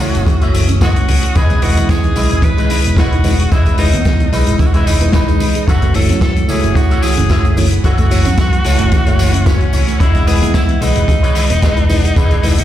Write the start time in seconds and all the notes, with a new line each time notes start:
Already playing: C#4 F#4 D#6
0.00 C#2 E3 A3 E4 F#4 A4 C#5 E5, open hi-hat, shaker
0.15 F#1 A3, closed hi-hat, tambourine, low conga, shaker
0.26 E3, kick, closed hi-hat, tambourine, high conga, shaker
0.41 F#1 A3 F#4 A4 C#5 E5, closed hi-hat, tambourine
0.54 E3, open hi-hat, tambourine, shaker
0.69 C#4, closed hi-hat, tambourine, high conga, shaker
0.81 F#4 A4 C#5 D#5, kick, snare, closed hi-hat, tambourine, shaker
0.96 E4, closed hi-hat
1.08 C#2 E3, muted clean electric guitar stroke, open hi-hat, tambourine, high conga, low conga, shaker
1.23 A3, closed hi-hat, tambourine, shaker
1.35 E1 D#3 E4 G#4 B4 D#5, kick, closed hi-hat, tambourine, shaker
1.50 G#3, closed hi-hat, tambourine, high conga
1.62 D#3 G#3 E4 F#4 B4 D#5, open hi-hat, tambourine, low conga, shaker
1.77 E2 B3, closed hi-hat, tambourine, shaker
1.89 E4 G#4, kick, snare, closed hi-hat, tambourine
2.03 D#4, closed hi-hat, high conga
2.16 B1 D#3 G#3 E4 G#4 B4 D#5, open hi-hat, tambourine, shaker
2.31 E1 G#3, closed hi-hat, tambourine, low conga, shaker
2.42 D#3 B4, kick, closed hi-hat, tambourine, high conga, shaker
2.57 G#3 E4 G#4 B4 D#5, closed hi-hat, tambourine
2.70 D#3, open hi-hat, tambourine, shaker
2.84 E1 B3, closed hi-hat, tambourine, high conga, shaker
2.97 E4 F#4 G#4 B4 D#5, kick, snare, closed hi-hat, tambourine, shaker
3.12 D#4, closed hi-hat
3.24 D#3 G#3 D#4 E4 B4, muted clean electric guitar stroke, open hi-hat, tambourine, high conga, low conga, shaker
3.39 G#3, closed hi-hat, tambourine, shaker
3.51 E1 D#3 E4 G#4 B4 D#5, kick, closed hi-hat, tambourine, shaker
3.66 G#3, closed hi-hat, tambourine, high conga
3.78 D#3 G#3 D#4 E4 B4, open hi-hat, tambourine, low conga, shaker
3.93 E2 B3, closed hi-hat, tambourine, shaker
4.05 E4, kick, snare, closed hi-hat, tambourine, shaker
4.20 D#4, closed hi-hat, high conga
4.32 B1 D#3 G#3 D#4 E4 G#4 B4 D#5, open hi-hat, tambourine, shaker
4.47 E1 G#3, closed hi-hat, tambourine, low conga, shaker
4.59 D#3 E4, kick, closed hi-hat, tambourine, high conga, shaker
4.67 F#4
4.74 E1 G#3 E4 G#4 B4 D#5, closed hi-hat, tambourine
4.87 D#3 D#4, open hi-hat, tambourine, shaker
5.01 G#3 B3 D#4 E4 B4, closed hi-hat, tambourine, high conga, shaker
5.12 D#4 E4 G#4 B4 D#5 B5, kick, snare, closed hi-hat, tambourine, shaker
5.28 E3 G#3 D#4 B4 D#5, closed hi-hat, tambourine
5.40 D#3, muted clean electric guitar stroke, open hi-hat, tambourine, high conga, low conga, shaker
5.55 G#3, closed hi-hat, tambourine, shaker
5.68 F#1 E3 F#4 A4 C#5 E5 F#5, kick, closed hi-hat, tambourine, shaker
5.82 A3, closed hi-hat, tambourine, high conga
5.94 E3 A3 E4 F#4 A4 C#5, open hi-hat, tambourine, low conga, shaker
6.09 F#2 C#4, closed hi-hat, tambourine, shaker
6.21 F#4 A4, kick, snare, closed hi-hat, tambourine, shaker
6.36 F#4, closed hi-hat, high conga
6.48 C#2 E3 A3 E4 F#4 G#4 A4 C#5 E5, open hi-hat, tambourine, shaker
6.63 F#1 A3, closed hi-hat, tambourine, low conga, shaker
6.75 E3 F#4, kick, closed hi-hat, tambourine, high conga, shaker
6.90 A3 F#4 A4 C#5 E5, closed hi-hat, tambourine
7.02 E3 G#4, open hi-hat, tambourine, shaker
7.17 F#1 C#4, closed hi-hat, tambourine, high conga, shaker
7.29 F#4 A4 C#5 E5, kick, snare, closed hi-hat, tambourine, shaker
7.45 F#4, closed hi-hat
7.57 E3 A3 E4 F#4 C#5, muted clean electric guitar stroke, open hi-hat, tambourine, high conga, low conga, shaker
7.71 A3, closed hi-hat, tambourine, shaker
7.84 F#1 E3 F#4 A4 C#5 E5, kick, closed hi-hat, tambourine, shaker
7.98 A3, closed hi-hat, tambourine, high conga
8.10 E3 A3 E4 F#4 C#5, open hi-hat, tambourine, low conga, shaker
8.25 F#2 C#4, closed hi-hat, tambourine, shaker
8.38 F#4, kick, snare, closed hi-hat, tambourine, shaker
8.52 F#4, closed hi-hat, high conga
8.64 C#2 E3 A3 E4 F#4 A4 C#5 E5 A5, open hi-hat, tambourine, shaker
8.78 F#1 A3, closed hi-hat, tambourine, low conga, shaker
8.92 E3 F#5, kick, closed hi-hat, tambourine, high conga, shaker
9.06 F#1 A3 F#4 A4 C#5 E5, closed hi-hat, tambourine
9.19 E3, open hi-hat, tambourine, shaker
9.33 C#4, closed hi-hat, tambourine, high conga, shaker
9.46 C#4 F#4 A4 C#5 E5, kick, snare, closed hi-hat, tambourine
9.61 F#4, closed hi-hat
9.73 C#2 E3 C#5, muted clean electric guitar stroke, open hi-hat, tambourine, high conga, low conga, shaker
9.87 A3, closed hi-hat, tambourine, shaker
10.00 E1 D#3 E4 G#4 B4 D#5, kick, closed hi-hat, tambourine, shaker
10.14 G#3, closed hi-hat, tambourine, high conga
10.27 D#3 G#3 E4 G#4 B4 D#5, open hi-hat, tambourine, low conga, shaker
10.41 E2 B3, closed hi-hat, tambourine, shaker
10.54 E4, kick, snare, closed hi-hat, tambourine
10.69 E4, closed hi-hat, high conga
10.81 B1 D#3 E3 G#3 D#4 E4 G#4 B4 D#5, open hi-hat, tambourine, shaker
10.96 E1 G#3, closed hi-hat, tambourine, low conga, shaker
11.08 D#3, kick, closed hi-hat, tambourine, high conga, shaker
11.22 G#3 E4 G#4 B4 C#5, closed hi-hat, tambourine
11.35 D#3, open hi-hat, tambourine, shaker
11.50 E1 B3, closed hi-hat, tambourine, high conga, shaker
11.62 E4 G#4 B4 D#5, kick, snare, closed hi-hat, tambourine, shaker
11.77 E4, closed hi-hat
11.89 D#3 G#3 D#4 E4 B4, muted clean electric guitar stroke, open hi-hat, tambourine, high conga, low conga, shaker
12.04 G#3, closed hi-hat, tambourine, shaker
12.16 E1 D#3 E4 G#4 B4 D#5, kick, closed hi-hat, tambourine, shaker
12.31 G#3, closed hi-hat, tambourine, high conga
12.43 D#3 G#3 D#4 E4 B4, open hi-hat, tambourine, low conga, shaker
12.58 E2 B3, closed hi-hat, tambourine, shaker